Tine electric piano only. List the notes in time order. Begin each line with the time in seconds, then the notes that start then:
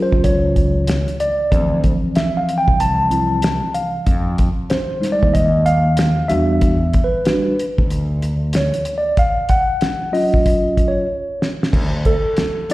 Already playing: F#3 C#4 F4
0.02 C5
0.24 C#5
1.20 D5
1.52 E3 F3 C4
2.16 E5
2.37 F5
2.58 G5
2.80 A5
3.11 F3 C4 E4
3.75 F5
4.70 C5
5.00 G3 G#3 D#4
5.12 D5
5.34 D#5
5.66 F5
6.28 G3 D4 F#4 E5
7.04 B4
7.26 G3 D4 F#4
8.56 C#5
8.98 D5
9.19 F5
9.50 F#5
10.12 F#3 C#4 F4 D#5
10.88 C#5
12.06 A4
12.69 F3 C4 E4